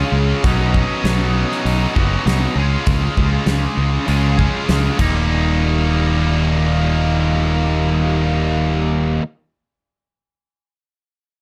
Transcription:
Already playing: C#3 G#3 C#4 F4 G#4
0.12 C#2
0.43 B1 B2 F#3 B3 C#4 D#4, kick, open hi-hat
0.74 kick
1.04 B1, snare, open hi-hat
1.52 snare
1.65 B1, open hi-hat
1.95 F#1 B2 F#3 B3 C#4 D#4, kick
2.26 C2 B2 F#3 B3 C#4 D#4, snare, open hi-hat
2.55 C#2 C#3 G#3 C#4 F4 G#4
2.87 C#2, kick, open hi-hat
3.17 C#2, kick
3.46 C#2, snare, open hi-hat
3.77 C#2
4.07 C#2 C#3 G#3 C#4 F4 G#4, open hi-hat
4.38 C#3 G#3 C#4 F4 G#4, kick
4.69 C#2, snare, open hi-hat
4.98 D#1 D#2 A#2 D#3 G3 A#3 D#4, kick, crash

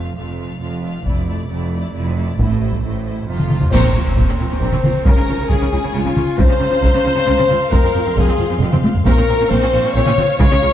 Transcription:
Already playing: F1 F2 A3 F4 F5
0.15 F1 F2 A3 F4 F5
0.39 A3 F4 F5
0.60 F1 F2 A3 F4 F5
0.83 A3 F4 F5
1.05 F1 F2 A3 D4 E4 D5, taiko
1.27 A3 E4 D5
1.49 F1 F2 A3 E4 D5
1.72 A3 E4 D5
1.94 F1 F2 A3 E4 D5
2.17 A3 E4 D5
2.37 A1 A2 A3 C4 E4, taiko
2.42 C5
2.60 A3 E4 C5
2.72 taiko
2.83 A1 A2 A3 E4 C5
3.05 A3 E4 C5
3.26 F1 F2 A3 D#4 F4 C5
3.40 taiko mid
3.50 A3 D#4 C5, taiko mid
3.61 taiko low
3.70 A#1 A#2 C4 C5 A#5 C#6, concert bass drum, taiko, crash, impact
3.84 A#2 C4 C#4
3.95 A#1 A#2 C4 F4
4.06 A#2 C4 C#4
4.17 A#1 A#2 C4, taiko
4.28 A#2 C4 C#4
4.39 A#1 A#2 C4 F4
4.50 A#2 C4 C#4
4.61 A#1 A#2 C4
4.72 A#2 C4 C#4, taiko mid
4.83 A#1 A#2 C4 F4, taiko mid
5.05 C#2 C#3 G#3 C#4 A#4 G#5, taiko
5.16 C#3 C#4
5.27 C#2 C#3 C#4 F4
5.38 C#3 C#4
5.49 C#2 C#3 G#3 C#4 G#4, taiko
5.61 C#3 C#4
5.72 C#2 C#3 C#4 F4
5.83 C#3 C#4
5.93 C#2 C#3 G#3 C#4 F4
6.05 C#3 C#4, taiko mid
6.16 C#2 C#3 C#4 F4, taiko mid
6.37 C#2 C#3 C4 C5 F5 A#5, taiko
6.48 C#3 C4 C#4
6.59 C#2 C#3 C4 F4
6.71 C#3 C4 C#4
6.82 C#2 C#3 C4, taiko
6.94 C#3 C4 C#4
7.04 C#2 C#3 C4 F4
7.16 C#3 C4 C#4
7.26 C#2 C#3 C4
7.38 C#3 C4 C#4, taiko mid
7.49 C#2 C#3 C4 F4, taiko mid
7.71 F1 F2 G#3 C4 A#4 C6, taiko
7.83 F2 C4
7.94 F1 F2 C4 F4
8.05 F2 C4
8.14 F1 F2 G#4, taiko
8.18 G#3 C4 G#4
8.27 F2 C4
8.38 F1 F2 C4 F4
8.50 F2 C4
8.60 F1 F2 G#3 C4
8.72 F2 C4, taiko mid
8.83 F1 F2 C4 F4, taiko high
8.95 taiko low
9.05 A#1 A#2 C4 A#4 F5 C#6, taiko
9.17 A#2 C4 C#4
9.27 A#1 A#2 C4 F4
9.40 A#2 C4 C#4
9.49 A#1 A#2 C4 C5, taiko
9.62 A#2 C4 C#4
9.72 A#1 A#2 C4 F4
9.84 A#2 C4 C#4
9.92 A#1 A#2 C4 C#5
10.06 A#2 C4 C#4, taiko mid
10.17 A#1 A#2 C4 F4, taiko mid
10.38 C#2 C#3 G#3 C#5, taiko
10.51 C#3 G#3 C#4
10.61 C#2 C#3 G#3 F4

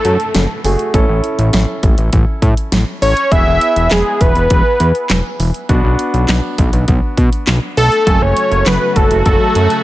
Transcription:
Already playing: A3 F#4 A4 G#5, downlifter
0.05 F#2, closed hi-hat
0.20 closed hi-hat
0.35 F#1, snare, closed hi-hat
0.64 F#1 A3 F#4 G#4, open hi-hat
0.79 closed hi-hat
0.94 A1 C#4 E4 A4, kick, closed hi-hat
1.09 A1
1.24 closed hi-hat
1.39 A1, closed hi-hat
1.53 A1, snare, closed hi-hat
1.83 A1, kick, closed hi-hat
1.98 A1, closed hi-hat
2.13 A1, kick, closed hi-hat
2.42 A2, kick, closed hi-hat
2.57 closed hi-hat
2.72 A1, snare, closed hi-hat
3.02 A1 C#5, open hi-hat
3.17 closed hi-hat
3.32 E1 B3 E4 G#4 E5, kick, closed hi-hat
3.46 E1
3.61 closed hi-hat
3.76 E1, closed hi-hat
3.91 E1 G#4, snare, clap, closed hi-hat
4.21 E1 B4, kick, closed hi-hat
4.35 E1, closed hi-hat
4.50 E1, kick, closed hi-hat
4.80 E2, closed hi-hat
4.95 closed hi-hat
5.10 E1, snare, clap, closed hi-hat
5.40 E1, open hi-hat
5.54 closed hi-hat
5.69 B1 B3 D4 F#4, kick, closed hi-hat
5.84 B1
5.99 closed hi-hat
6.14 B1, closed hi-hat
6.28 B1, snare, clap, closed hi-hat
6.58 B1, kick, closed hi-hat
6.73 B1, closed hi-hat
6.88 B1, kick, closed hi-hat
7.17 B2, kick, closed hi-hat
7.33 closed hi-hat
7.47 B1, snare, clap, closed hi-hat
7.77 B1 A4, open hi-hat
7.92 closed hi-hat
8.07 F#1 C#3 F#3 A3 F#4 G#5, kick, closed hi-hat
8.22 F#1 C#5
8.37 closed hi-hat
8.51 F#1, closed hi-hat
8.66 F#1 B4, snare, clap, closed hi-hat
8.96 F#1 A4, kick, closed hi-hat
9.11 F#1, closed hi-hat
9.26 F#1 A4, kick, closed hi-hat
9.55 F#2, closed hi-hat
9.70 closed hi-hat

